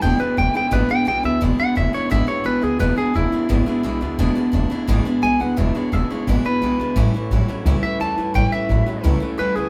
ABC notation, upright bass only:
X:1
M:4/4
L:1/8
Q:1/4=173
K:Emix
V:1 name="Upright bass" clef=bass
E,,, z E,,, z G,,, z B,,, D,, | E,,, z E,,, z G,,, z B,,, D,, | E,,, z E,,, z G,,, z B,,, D,, | E,,, z E,,, z G,,, z B,,, D,, |
E,,, z E,,, z G,,, z B,,, D,, | A,,, z A,,, z C,, z E,, =G,, | A,,, z A,,, z C,, z E,, D,, |]